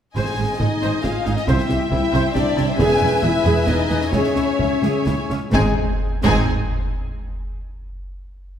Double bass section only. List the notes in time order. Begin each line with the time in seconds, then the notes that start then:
0.16 G#1
0.38 G#1
0.61 G#1
0.83 G#1
1.05 G#1
1.27 G#1
1.48 C2
1.71 C2
1.92 C2
2.13 C2
2.36 C2
2.57 C2
2.79 E1
3.01 E1
3.24 E1
3.46 E1
3.68 E1
3.91 E1
4.14 C#2
4.37 C#2
4.60 C#2
4.83 C#2
5.07 C#2
5.31 C#2
5.54 G#1
6.24 G#1